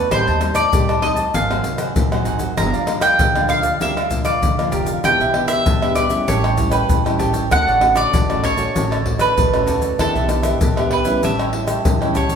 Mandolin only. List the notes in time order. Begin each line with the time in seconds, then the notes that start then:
0.12 C5
0.55 D5
1.02 D#5
1.34 F5
2.57 A#5
3.02 G5
3.50 F5
3.82 E5
4.25 D5
5.05 G5
5.48 E5
5.95 D5
6.28 C#5
6.72 B4
7.52 F#5
7.97 D5
8.44 C#5
9.21 B4
10.00 A4
10.93 B4
11.25 E5
12.16 C#5